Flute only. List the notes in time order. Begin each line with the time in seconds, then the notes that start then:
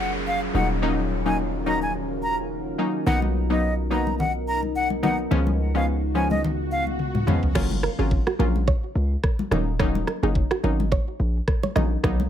0.00 F#5
0.27 F5
0.55 F#5
1.26 G#5
1.67 A#5
1.82 G#5
2.23 A#5
3.07 F#5
3.50 D#5
3.92 A#5
4.19 F#5
4.48 A#5
4.76 F#5
5.04 F#5
5.75 F5
6.16 G#5
6.31 D#5
6.72 F5